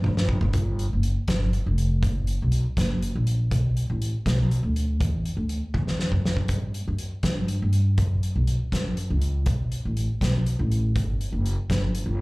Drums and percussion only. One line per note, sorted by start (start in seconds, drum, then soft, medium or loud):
0.04 mid tom medium
0.17 snare medium
0.29 kick medium
0.41 floor tom medium
0.53 kick medium
0.53 closed hi-hat medium
0.79 closed hi-hat soft
1.03 closed hi-hat medium
1.28 kick medium
1.28 snare medium
1.28 closed hi-hat medium
1.53 closed hi-hat soft
1.78 closed hi-hat medium
2.03 kick loud
2.03 closed hi-hat medium
2.27 closed hi-hat medium
2.52 closed hi-hat medium
2.77 kick medium
2.77 snare medium
2.77 closed hi-hat medium
3.02 closed hi-hat medium
3.27 closed hi-hat medium
3.51 kick medium
3.51 closed hi-hat medium
3.77 closed hi-hat medium
4.02 closed hi-hat medium
4.26 kick medium
4.26 snare medium
4.26 closed hi-hat medium
4.51 closed hi-hat medium
4.76 closed hi-hat medium
5.01 kick loud
5.01 closed hi-hat medium
5.25 closed hi-hat medium
5.49 closed hi-hat medium
5.74 kick medium
5.74 high tom medium
5.87 snare soft
5.99 snare medium
6.12 kick medium
6.25 snare medium
6.37 kick medium
6.48 kick medium
6.48 closed hi-hat medium
6.74 closed hi-hat medium
6.99 closed hi-hat medium
7.23 kick medium
7.23 snare medium
7.23 closed hi-hat medium
7.48 closed hi-hat medium
7.73 closed hi-hat medium
7.98 kick loud
7.98 closed hi-hat medium
8.23 closed hi-hat medium
8.47 closed hi-hat medium
8.72 kick medium
8.72 snare medium
8.72 closed hi-hat medium
8.97 closed hi-hat medium
9.22 closed hi-hat soft
9.46 kick medium
9.46 closed hi-hat medium
9.72 closed hi-hat medium
9.97 closed hi-hat medium
10.21 kick medium
10.21 snare medium
10.21 closed hi-hat medium
10.46 closed hi-hat soft
10.72 closed hi-hat medium
10.96 kick medium
10.96 closed hi-hat medium
11.21 closed hi-hat medium
11.46 closed hi-hat medium
11.70 kick medium
11.70 snare medium
11.70 closed hi-hat medium
11.95 closed hi-hat medium